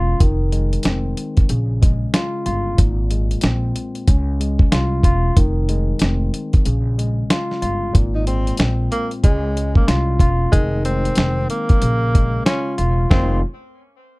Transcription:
0.00 0.15 E1 medium
0.00 0.21 G#3 medium
0.00 0.20 C#4 medium
0.00 0.22 F4 medium
0.20 0.75 F1 loud
0.20 1.50 D#3 medium
0.20 kick loud
0.20 closed hi-hat loud
0.52 1.49 G#3 medium
0.52 closed hi-hat medium
0.73 closed hi-hat medium
0.83 1.12 F1 loud
0.83 1.49 C4 medium
0.83 snare loud
0.83 closed hi-hat loud
1.17 closed hi-hat medium
1.37 kick medium
1.37 closed hi-hat soft
1.49 2.04 A#1 loud
1.49 2.79 C#3 medium
1.49 closed hi-hat medium
1.82 2.79 G#3 medium
1.82 kick medium
1.82 closed hi-hat medium
2.14 2.45 F4 medium
2.14 snare loud
2.14 closed hi-hat medium
2.46 2.74 G1 medium
2.46 2.78 F4 medium
2.46 closed hi-hat medium
2.77 3.33 G#1 loud
2.77 4.07 A#2 medium
2.77 kick loud
2.77 closed hi-hat loud
3.11 4.08 G#3 medium
3.11 closed hi-hat medium
3.31 closed hi-hat medium
3.41 3.71 A#1 loud
3.41 4.08 C4 medium
3.41 snare loud
3.41 closed hi-hat loud
3.76 closed hi-hat medium
3.95 closed hi-hat soft
4.07 4.63 C#2 loud
4.07 5.37 C#4 medium
4.07 kick medium
4.07 closed hi-hat medium
4.40 5.37 G#3 medium
4.40 closed hi-hat medium
4.59 kick medium
4.72 5.00 C2 medium
4.72 5.03 F4 medium
4.72 snare loud
4.72 closed hi-hat medium
5.03 5.31 E1 medium
5.03 5.37 F4 medium
5.03 kick medium
5.03 closed hi-hat medium
5.37 5.91 F1 loud
5.37 6.66 D#3 medium
5.37 kick loud
5.37 closed hi-hat loud
5.69 6.66 G#3 medium
5.69 closed hi-hat medium
5.99 6.29 F1 loud
5.99 6.66 C4 medium
5.99 snare loud
5.99 closed hi-hat loud
6.34 closed hi-hat medium
6.53 kick medium
6.53 closed hi-hat soft
6.65 7.21 A#1 loud
6.65 7.95 C#3 medium
6.65 closed hi-hat medium
6.98 7.95 G#3 medium
6.98 closed hi-hat medium
7.30 7.61 F4 medium
7.30 snare loud
7.30 closed hi-hat medium
7.51 snare soft
7.62 7.90 G1 medium
7.62 7.95 F4 medium
7.62 closed hi-hat medium
7.93 8.50 G#1 loud
7.93 9.23 A#2 medium
7.93 kick loud
7.93 closed hi-hat loud
8.15 8.26 D#4 medium
8.27 9.24 G#3 medium
8.27 8.56 C4 medium
8.27 closed hi-hat medium
8.47 closed hi-hat medium
8.57 8.87 A#1 loud
8.57 9.24 C4 medium
8.57 snare loud
8.57 closed hi-hat medium
8.92 9.10 A#3 medium
8.92 closed hi-hat medium
9.11 closed hi-hat soft
9.23 9.79 C#2 loud
9.23 9.73 G#3 medium
9.23 10.52 C#4 medium
9.23 kick medium
9.23 closed hi-hat medium
9.56 10.53 G#3 medium
9.56 closed hi-hat medium
9.75 9.87 A#3 medium
9.75 kick medium
9.88 10.16 C2 loud
9.88 10.19 F4 loud
9.88 snare loud
9.88 closed hi-hat medium
10.20 10.47 E1 loud
10.20 10.53 F4 medium
10.20 kick medium
10.20 closed hi-hat medium
10.52 11.08 F1 loud
10.52 11.82 D#3 medium
10.52 10.81 G#3 loud
10.52 kick loud
10.52 closed hi-hat loud
10.85 11.82 G#3 medium
10.85 11.46 C4 medium
10.85 closed hi-hat medium
11.05 closed hi-hat medium
11.15 11.45 F1 loud
11.15 11.82 C4 medium
11.15 snare loud
11.15 closed hi-hat loud
11.50 12.43 A#3 medium
11.50 closed hi-hat medium
11.69 kick loud
11.69 closed hi-hat soft
11.82 12.37 A#1 loud
11.82 13.11 C#3 medium
11.82 closed hi-hat medium
12.14 13.10 G#3 medium
12.14 kick loud
12.14 closed hi-hat medium
12.46 12.75 C#4 medium
12.46 12.77 F4 medium
12.46 snare loud
12.46 closed hi-hat medium
12.78 13.06 E1 medium
12.78 13.09 F4 medium
12.78 closed hi-hat medium
13.11 13.41 F1 loud
13.11 13.41 D#3 medium
13.11 13.41 G#3 medium
13.11 13.41 C4 medium
13.11 13.41 F4 medium
13.11 kick loud
13.11 snare loud

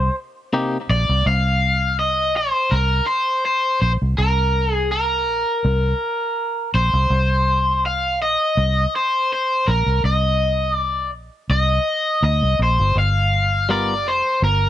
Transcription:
0.00 0.15 C5 loud
0.53 0.76 C3 medium
0.53 0.77 A#3 medium
0.53 0.77 D#4 medium
0.53 0.77 G4 medium
0.89 1.05 A#1 medium
0.89 1.24 D5 medium
1.09 1.22 C2 medium
1.26 2.35 C2 loud
1.26 1.99 F5 medium
1.99 2.33 D#5 loud
2.35 2.51 A#1 medium
2.35 2.74 C5 medium
2.71 3.00 C2 medium
2.71 3.06 A#4 medium
3.07 3.44 C5 medium
3.45 3.80 C5 medium
3.82 3.97 A#1 medium
3.82 3.92 C5 medium
4.02 4.14 C2 medium
4.18 5.28 C2 medium
4.18 4.74 A#4 medium
4.74 4.91 G#4 medium
4.92 6.70 A#4 medium
5.28 5.43 A#1 medium
5.65 5.92 C2 medium
6.74 6.89 A#1 medium
6.74 7.85 C5 medium
6.94 7.06 C2 medium
7.10 8.21 C2 medium
7.86 8.19 F5 medium
8.21 8.36 A#1 medium
8.21 8.95 D#5 medium
8.57 8.85 C2 loud
8.96 9.32 C5 medium
9.33 9.69 C5 medium
9.68 9.82 A#1 medium
9.68 10.01 A#4 medium
9.86 9.99 C2 medium
10.04 11.13 C2 medium
10.04 10.75 D#5 medium
10.75 11.10 D5 medium
11.13 11.28 A#1 medium
11.49 11.78 C2 medium
11.49 12.23 D#5 loud
12.23 12.41 D2 medium
12.23 12.58 D#5 loud
12.42 12.58 C2 medium
12.59 12.78 A#1 medium
12.59 12.98 C5 medium
12.79 12.95 G1 medium
12.95 14.06 G1 medium
12.95 13.71 F5 loud
13.69 13.93 G3 medium
13.69 13.93 B3 medium
13.69 13.94 F4 medium
13.69 13.94 A#4 medium
13.69 14.09 D5 loud
14.06 14.21 F1 medium
14.06 14.44 C5 medium
14.42 14.69 G1 loud
14.42 14.69 A#4 medium

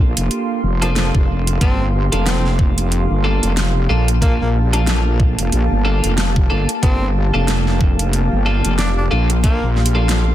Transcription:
0.00 0.14 A#1 medium
0.00 0.60 A#3 medium
0.00 10.35 A#3 medium
0.00 0.60 D4 medium
0.00 0.60 F4 medium
0.00 10.35 G4 medium
0.00 0.60 A4 medium
0.00 10.35 F5 medium
0.00 3.89 C6 medium
0.17 0.29 F1 medium
0.17 closed hi-hat medium
0.31 closed hi-hat soft
0.63 1.12 F1 loud
0.82 0.91 F3 medium
0.82 1.58 A#3 medium
0.82 1.58 D4 medium
0.82 1.58 F4 medium
0.82 1.58 A4 medium
0.82 closed hi-hat medium
0.96 1.08 F3 medium
0.96 snare loud
0.96 closed hi-hat soft
1.15 1.59 F1 medium
1.15 kick loud
1.47 closed hi-hat medium
1.61 2.09 G1 medium
1.61 1.80 A#3 medium
1.61 1.86 C4 medium
1.61 1.80 D4 medium
1.61 1.80 F4 medium
1.61 1.80 A4 medium
1.61 kick loud
1.61 closed hi-hat soft
2.12 3.07 F1 medium
2.12 3.21 A#3 medium
2.12 3.21 D4 medium
2.12 3.21 F4 medium
2.12 3.21 A4 medium
2.12 closed hi-hat medium
2.26 2.51 C4 medium
2.26 snare loud
2.26 closed hi-hat soft
2.45 snare soft
2.59 kick loud
2.78 closed hi-hat medium
2.92 closed hi-hat soft
3.10 3.40 G1 medium
3.24 3.51 A#3 medium
3.24 3.52 D4 medium
3.24 3.52 F4 medium
3.24 3.51 A4 loud
3.43 3.87 F1 loud
3.43 closed hi-hat medium
3.57 snare loud
3.57 closed hi-hat soft
3.87 4.38 A#1 loud
3.87 4.08 A#3 medium
3.87 4.08 D4 medium
3.87 4.08 F4 medium
3.87 4.08 A4 medium
3.87 9.11 A5 medium
4.08 closed hi-hat medium
4.22 4.41 A#3 medium
4.22 4.34 A#3 medium
4.22 4.41 D4 medium
4.22 4.41 F4 medium
4.22 4.41 A4 medium
4.22 kick loud
4.22 closed hi-hat soft
4.41 5.36 A#1 loud
4.41 4.50 A#3 medium
4.73 5.82 A#3 medium
4.73 5.82 D4 medium
4.73 5.82 F4 medium
4.73 5.82 A4 medium
4.73 closed hi-hat medium
4.87 snare loud
4.87 closed hi-hat soft
5.20 kick loud
5.38 5.50 F1 medium
5.38 closed hi-hat medium
5.52 5.68 A#1 loud
5.52 closed hi-hat soft
5.71 6.01 G1 medium
5.85 6.12 A#3 medium
5.85 6.12 D4 medium
5.85 6.12 F4 medium
5.85 6.12 A4 loud
6.04 6.48 F1 loud
6.04 closed hi-hat medium
6.18 snare loud
6.18 closed hi-hat soft
6.36 kick loud
6.50 6.66 G1 loud
6.50 6.69 A#3 medium
6.50 6.69 D4 medium
6.50 6.69 F4 medium
6.50 6.69 A4 loud
6.69 closed hi-hat medium
6.83 7.31 G1 medium
6.83 7.02 A#3 medium
6.83 7.07 C4 medium
6.83 7.02 D4 medium
6.83 7.02 F4 medium
6.83 7.02 A4 medium
6.83 kick loud
6.83 closed hi-hat medium
7.34 8.29 F1 loud
7.34 8.43 A#3 medium
7.34 8.43 D4 medium
7.34 8.43 F4 medium
7.34 8.43 A4 medium
7.48 snare loud
7.48 closed hi-hat medium
7.67 snare soft
7.81 kick medium
7.99 closed hi-hat medium
8.13 closed hi-hat soft
8.32 8.62 G1 medium
8.46 8.73 A#3 medium
8.46 8.73 D4 medium
8.46 8.73 F4 medium
8.46 8.73 A4 loud
8.65 9.09 F1 loud
8.65 closed hi-hat medium
8.79 8.91 D4 medium
8.79 snare loud
8.79 closed hi-hat soft
8.97 9.06 D4 medium
9.08 9.60 A#1 medium
9.08 9.30 A#3 medium
9.08 9.30 D4 medium
9.08 9.30 F4 medium
9.08 9.30 A4 loud
9.08 10.35 C6 medium
9.30 closed hi-hat medium
9.43 9.68 A#3 medium
9.43 9.63 A#3 medium
9.43 9.63 D4 medium
9.43 9.63 F4 medium
9.43 9.63 A4 medium
9.43 kick loud
9.43 closed hi-hat medium
9.63 10.35 A#1 loud
9.76 snare soft
9.86 closed hi-hat medium
9.95 10.35 A#3 medium
9.95 10.35 D4 medium
9.95 10.35 F4 medium
9.95 10.35 A4 medium
10.09 snare loud
10.09 closed hi-hat medium

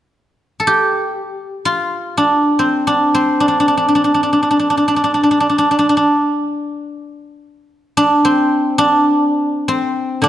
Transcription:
0.60 2.79 A4 soft
0.67 3.03 G4 medium
1.65 4.18 F4 medium
2.17 2.87 D4 medium
2.59 3.14 C4 soft
2.87 3.40 D4 medium
3.15 6.15 C4 soft
3.40 3.48 D4 soft
3.48 3.59 D4 soft
3.60 3.67 D4 soft
3.68 3.77 D4 soft
3.77 3.88 D4 soft
3.88 3.95 D4 soft
3.95 4.04 D4 soft
4.04 4.14 D4 soft
4.14 4.23 D4 soft
4.23 4.32 D4 soft
4.33 4.42 D4 soft
4.43 4.50 D4 soft
4.51 4.59 D4 soft
4.59 4.70 D4 soft
4.70 4.77 D4 soft
4.77 4.87 D4 soft
4.88 4.96 D4 soft
4.96 5.03 D4 soft
5.04 5.14 D4 soft
5.14 5.23 D4 soft
5.23 5.31 D4 soft
5.31 5.40 D4 soft
5.40 5.49 D4 soft
5.49 5.58 D4 soft
5.58 5.70 D4 soft
5.71 5.78 D4 soft
5.79 5.89 D4 soft
5.89 5.96 D4 soft
5.97 7.97 D4 soft
7.97 8.78 D4 medium
8.25 9.68 C4 medium
8.78 10.23 D4 medium
9.68 10.29 C4 medium
10.22 10.29 D3 soft
10.22 10.29 D4 medium

